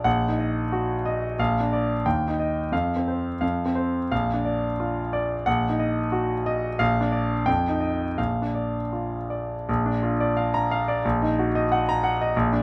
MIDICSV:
0, 0, Header, 1, 2, 480
1, 0, Start_track
1, 0, Key_signature, -2, "major"
1, 0, Tempo, 666667
1, 37, Time_signature, 2, 2, 24, 8
1, 1956, Tempo, 690449
1, 3396, Tempo, 668896
1, 5316, Tempo, 709220
1, 5796, Tempo, 750939
1, 6756, Tempo, 692841
1, 7236, Tempo, 655738
1, 8890, End_track
2, 0, Start_track
2, 0, Title_t, "Grand piano"
2, 0, Program_c, 0, 0
2, 0, Control_c, 0, 64, 127
2, 32, Note_on_c, 0, 34, 61
2, 32, Note_on_c, 0, 78, 73
2, 52, Control_c, 0, 64, 0
2, 189, Control_c, 0, 64, 127
2, 205, Note_on_c, 0, 63, 47
2, 282, Note_on_c, 0, 75, 44
2, 427, Note_off_c, 0, 78, 0
2, 464, Note_off_c, 0, 63, 0
2, 521, Note_on_c, 0, 66, 54
2, 668, Note_off_c, 0, 75, 0
2, 759, Note_on_c, 0, 75, 58
2, 904, Note_off_c, 0, 66, 0
2, 970, Note_off_c, 0, 34, 0
2, 998, Note_off_c, 0, 75, 0
2, 999, Note_on_c, 0, 34, 62
2, 1004, Note_on_c, 0, 77, 74
2, 1013, Control_c, 0, 64, 0
2, 1120, Control_c, 0, 64, 127
2, 1153, Note_on_c, 0, 62, 43
2, 1245, Note_on_c, 0, 74, 45
2, 1381, Note_off_c, 0, 77, 0
2, 1409, Note_off_c, 0, 62, 0
2, 1460, Note_off_c, 0, 34, 0
2, 1479, Note_off_c, 0, 74, 0
2, 1480, Note_on_c, 0, 39, 46
2, 1482, Note_on_c, 0, 79, 59
2, 1488, Control_c, 0, 64, 0
2, 1622, Control_c, 0, 64, 127
2, 1641, Note_on_c, 0, 63, 46
2, 1724, Note_on_c, 0, 75, 46
2, 1862, Note_off_c, 0, 79, 0
2, 1895, Note_off_c, 0, 63, 0
2, 1945, Note_off_c, 0, 39, 0
2, 1957, Note_on_c, 0, 41, 51
2, 1962, Note_off_c, 0, 75, 0
2, 1963, Note_on_c, 0, 77, 60
2, 1968, Control_c, 0, 64, 0
2, 2097, Control_c, 0, 64, 127
2, 2126, Note_on_c, 0, 60, 38
2, 2208, Note_on_c, 0, 72, 37
2, 2349, Note_off_c, 0, 77, 0
2, 2383, Note_off_c, 0, 60, 0
2, 2429, Note_off_c, 0, 41, 0
2, 2437, Note_on_c, 0, 77, 53
2, 2440, Note_on_c, 0, 41, 42
2, 2448, Note_off_c, 0, 72, 0
2, 2457, Control_c, 0, 64, 0
2, 2589, Control_c, 0, 64, 127
2, 2608, Note_on_c, 0, 60, 37
2, 2677, Note_on_c, 0, 72, 44
2, 2826, Note_off_c, 0, 77, 0
2, 2863, Note_off_c, 0, 60, 0
2, 2908, Note_off_c, 0, 41, 0
2, 2919, Note_off_c, 0, 72, 0
2, 2928, Note_on_c, 0, 34, 51
2, 2928, Note_on_c, 0, 77, 63
2, 2939, Control_c, 0, 64, 0
2, 3041, Control_c, 0, 64, 127
2, 3081, Note_on_c, 0, 62, 41
2, 3163, Note_on_c, 0, 74, 38
2, 3304, Note_off_c, 0, 77, 0
2, 3334, Note_off_c, 0, 62, 0
2, 3403, Note_on_c, 0, 65, 43
2, 3545, Note_off_c, 0, 74, 0
2, 3642, Note_on_c, 0, 74, 58
2, 3785, Note_off_c, 0, 65, 0
2, 3850, Note_off_c, 0, 34, 0
2, 3878, Note_off_c, 0, 74, 0
2, 3879, Note_on_c, 0, 78, 79
2, 3883, Note_on_c, 0, 34, 60
2, 3890, Control_c, 0, 64, 0
2, 4020, Control_c, 0, 64, 127
2, 4044, Note_on_c, 0, 63, 50
2, 4119, Note_on_c, 0, 75, 52
2, 4259, Note_off_c, 0, 78, 0
2, 4295, Note_off_c, 0, 63, 0
2, 4352, Note_on_c, 0, 66, 53
2, 4501, Note_off_c, 0, 75, 0
2, 4598, Note_on_c, 0, 75, 65
2, 4740, Note_off_c, 0, 66, 0
2, 4813, Note_off_c, 0, 34, 0
2, 4833, Note_on_c, 0, 77, 84
2, 4835, Note_on_c, 0, 34, 67
2, 4839, Note_off_c, 0, 75, 0
2, 4852, Control_c, 0, 64, 0
2, 4981, Control_c, 0, 64, 127
2, 4989, Note_on_c, 0, 62, 49
2, 5071, Note_on_c, 0, 74, 48
2, 5219, Note_off_c, 0, 77, 0
2, 5249, Note_off_c, 0, 62, 0
2, 5301, Note_off_c, 0, 34, 0
2, 5313, Note_on_c, 0, 79, 68
2, 5314, Note_off_c, 0, 74, 0
2, 5316, Note_on_c, 0, 41, 55
2, 5329, Control_c, 0, 64, 0
2, 5437, Control_c, 0, 64, 127
2, 5465, Note_on_c, 0, 63, 47
2, 5547, Note_on_c, 0, 75, 50
2, 5696, Note_off_c, 0, 79, 0
2, 5727, Note_off_c, 0, 63, 0
2, 5782, Note_off_c, 0, 41, 0
2, 5795, Note_off_c, 0, 75, 0
2, 5800, Note_on_c, 0, 34, 48
2, 5800, Note_on_c, 0, 77, 57
2, 5810, Control_c, 0, 64, 0
2, 5946, Control_c, 0, 64, 127
2, 5954, Note_on_c, 0, 62, 35
2, 6036, Note_on_c, 0, 74, 35
2, 6178, Note_off_c, 0, 77, 0
2, 6207, Note_off_c, 0, 62, 0
2, 6278, Note_on_c, 0, 65, 35
2, 6417, Note_off_c, 0, 74, 0
2, 6518, Note_on_c, 0, 74, 42
2, 6667, Note_off_c, 0, 65, 0
2, 6733, Note_off_c, 0, 34, 0
2, 6758, Note_off_c, 0, 74, 0
2, 6765, Note_on_c, 0, 34, 64
2, 6772, Control_c, 0, 64, 0
2, 6883, Note_on_c, 0, 62, 50
2, 6910, Control_c, 0, 64, 127
2, 7001, Note_on_c, 0, 65, 48
2, 7074, Note_off_c, 0, 62, 0
2, 7123, Note_on_c, 0, 74, 56
2, 7191, Note_off_c, 0, 65, 0
2, 7235, Note_on_c, 0, 77, 57
2, 7313, Note_off_c, 0, 74, 0
2, 7363, Note_on_c, 0, 82, 77
2, 7433, Note_off_c, 0, 77, 0
2, 7490, Note_on_c, 0, 77, 65
2, 7557, Note_off_c, 0, 82, 0
2, 7613, Note_on_c, 0, 74, 57
2, 7681, Note_off_c, 0, 77, 0
2, 7700, Note_off_c, 0, 34, 0
2, 7730, Note_off_c, 0, 74, 0
2, 7736, Note_on_c, 0, 34, 70
2, 7740, Control_c, 0, 64, 0
2, 7860, Note_on_c, 0, 63, 57
2, 7862, Control_c, 0, 64, 127
2, 7985, Note_on_c, 0, 66, 49
2, 8047, Note_off_c, 0, 63, 0
2, 8104, Note_on_c, 0, 75, 62
2, 8169, Note_off_c, 0, 66, 0
2, 8224, Note_on_c, 0, 78, 65
2, 8287, Note_off_c, 0, 75, 0
2, 8349, Note_on_c, 0, 82, 87
2, 8406, Note_off_c, 0, 78, 0
2, 8457, Note_on_c, 0, 78, 66
2, 8526, Note_off_c, 0, 82, 0
2, 8588, Note_on_c, 0, 75, 60
2, 8640, Note_off_c, 0, 78, 0
2, 8657, Note_off_c, 0, 34, 0
2, 8693, Note_off_c, 0, 75, 0
2, 8693, Control_c, 0, 64, 0
2, 8697, Note_on_c, 0, 34, 74
2, 8802, Control_c, 0, 64, 127
2, 8818, Note_on_c, 0, 62, 52
2, 8890, Note_off_c, 0, 34, 0
2, 8890, Note_off_c, 0, 62, 0
2, 8890, End_track
0, 0, End_of_file